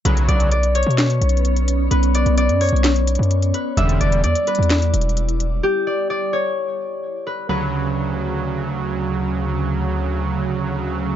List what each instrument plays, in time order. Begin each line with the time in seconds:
0.05 808-style bass B1, analog polysynth D2 C#3 F#3, ambient pad B3 C#4 C#5, harp B4, closed hi-hat
0.17 closed hi-hat
0.28 808-style bass B1, harp D5, closed hi-hat
0.40 closed hi-hat
0.52 harp D5, closed hi-hat
0.63 closed hi-hat
0.75 harp C#5, closed hi-hat
0.83 808-style bass B2, closed hi-hat
0.91 closed hi-hat
0.98 snare, clap, closed hi-hat
1.10 closed hi-hat
1.21 808-style bass B1, closed hi-hat
1.29 closed hi-hat
1.37 closed hi-hat
1.45 closed hi-hat
1.56 closed hi-hat
1.68 closed hi-hat
1.91 808-style bass B1, harp B4, closed hi-hat
2.03 closed hi-hat
2.15 harp D5, closed hi-hat
2.26 808-style bass B1, closed hi-hat
2.38 harp D5, closed hi-hat
2.49 808-style bass F#2, closed hi-hat
2.61 harp C#5, closed hi-hat, open hi-hat
2.69 808-style bass B1, closed hi-hat
2.76 closed hi-hat
2.84 snare, clap, closed hi-hat
2.96 closed hi-hat
3.07 closed hi-hat
3.15 808-style bass F#2, closed hi-hat
3.23 closed hi-hat
3.31 closed hi-hat
3.42 closed hi-hat
3.54 harp B4, closed hi-hat
3.77 808-style bass E1, analog polysynth E2 D3 G3, ambient pad G3 E4 D5, harp E5, closed hi-hat
3.89 closed hi-hat
4.00 808-style bass E1, harp D5, closed hi-hat
4.12 closed hi-hat
4.24 808-style bass E2, harp D5, closed hi-hat
4.35 closed hi-hat
4.47 harp B4, closed hi-hat
4.55 808-style bass E2, closed hi-hat
4.63 closed hi-hat
4.70 snare, clap, closed hi-hat
4.82 closed hi-hat
4.94 808-style bass E1, closed hi-hat
5.01 closed hi-hat
5.09 closed hi-hat
5.17 closed hi-hat
5.29 closed hi-hat
5.40 closed hi-hat
5.63 harp G4
5.87 harp D5
6.10 harp D5
6.33 harp C#5
7.27 harp B4
7.49 analog polysynth D2 C#3 F#3, harp B4